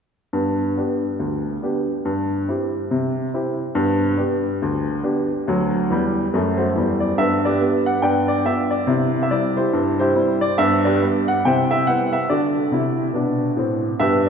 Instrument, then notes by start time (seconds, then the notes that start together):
upright piano
0.33 G2 B3
0.77 B3 D4 G4
1.19 D2
1.63 B3 D4 G4
2.05 G2
2.48 C4 E4 G4
2.91 C3
3.34 C4 E4 G4
3.75 G2 B3
4.18 B3 D4 G4
4.62 D2
5.03 B3 D4 G4
5.48 D2 F#3
5.90 E2 G3
6.34 F#2 A3
6.57 F#4 A4 C5
6.75 E2 G3
7.00 D5
7.18 G2 B3 E5
7.45 G4 B4 D5
7.61 B3 D4 G4
7.86 F#5
8.02 G2 B3 B4 D5 G5
8.28 D5
8.46 B3 D4 F4 E5
8.71 D5
8.87 C3 E4
9.23 E5
9.31 G3 C4 E4 D5
9.57 E4 G4 C5
9.73 G2
9.99 E4 G4 C5
10.16 G3 C4 E4
10.41 D5
10.58 G2 B3 E5
10.85 G4 B4 D5
11.03 G3 B3 D4
11.28 F#5
11.45 C3 E4 C5 E5 G5
11.71 E5
11.87 G3 B3 E4 F#5
12.13 E5
12.30 D3 F#4 A4 D5
12.72 C3 E4
13.13 B2 D4
13.57 A2 C4
14.00 G2 B3 G4 B4 E5